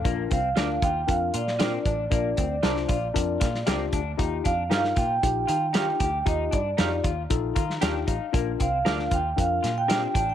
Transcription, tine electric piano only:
\new Staff \with { instrumentName = "Tine electric piano" } { \time 4/4 \key bes \major \tempo 4 = 116 << { <a' f''>16 r2. r8. | r1 | r1 | r2 r8 bes''8 g''8 f''8 |
r1 | } \\ { <d' f' bes'>8 r8 <d' f' bes'>8 r8 <d' f' bes'>8 r8 <d' f' bes'>8 r8 | <d' f' bes'>8 r8 <d' f' c''>8 r8 <d' f' bes'>8 r8 <d' f' g'>8 r8 | <ees' f' g'>8 r8 <ees' f' bes'>8 r8 <ees' f' g'>8 r8 <ees' f' g'>8 r8 | <ees' f' g'>8 r8 <ees' f' g'>8 r8 <ees' f' a'>8 r8 <ees' f' g'>8 r8 |
<d' f' bes'>8 r8 <d' f' bes'>8 r8 <d' f' bes'>8 r8 <d' f' g'>8 r8 | } >> }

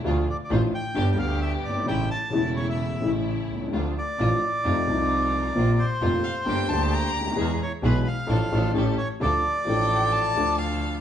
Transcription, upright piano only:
\new Staff \with { instrumentName = "Upright piano" } { \clef bass \time 4/4 \key d \minor \tempo 4 = 131 << { <d, d f a f'>8 r8 <a,, a, d f a f'>8 r8 <g,, g, d g b g'>8 <d, d g b g'>4. | <a,, a, cis e a e'>8 r8 <e,, e, cis e a e'>4. <a,, a, cis e a e'>4. | <d, d f a f'>8 r8 <a,, a, d f a f'>8 r8 <f, c f a ees'>8 <c, c f a ees'>4. | <bes,, bes, c f bes f'>8 r8 <f,, f, c f bes f'>8 r8 <g,, g, d g bes g'>8 <d, d g bes g'>4. |
<e, e gis b gis'>8 r8 <b,, b, e gis b gis'>8 r8 <a,, a, f a d' a'>8 <a,, a, f a d' a'>8 <a,, a, e a cis' g'>8 r8 | <d, d f a d' a'>8 r8 <a,, a, f a d' a'>4. <d, d f a d' a'>4. | } \\ { r2. r8 r32 fis,,32 g,,32 gis,,32 | r2. r8 r32 b,,32 c,32 cis,32 | r1 | r2. r8 r32 cis,32 d,32 ees,32 |
r1 | r1 | } >> }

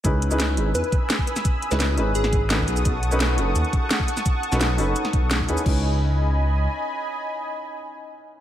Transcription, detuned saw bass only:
\new Staff \with { instrumentName = "Detuned saw bass" } { \clef bass \time 4/4 \key cis \minor \tempo 4 = 171 cis,8. cis,8. gis,,8 e,16 r4. r16 | r8. cis,8. gis,,8 gis,,4. b,,8 | b,,8. b,,8. fis,,8 dis,16 r4. r16 | r8. b,,8. fis,,8 r8. b,,8. dis,16 r16 |
cis,2. r4 | r1 | }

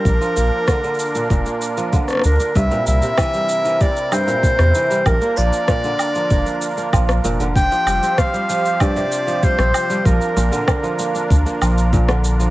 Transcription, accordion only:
\new Staff \with { instrumentName = "Accordion" } { \time 4/4 \key bes \lydian \tempo 4 = 96 <d' f' bes'>1 | <c c' e' bes'>1 | <d' f' bes'>1 | <f g' c''>1 |
<d' bes'>1 | }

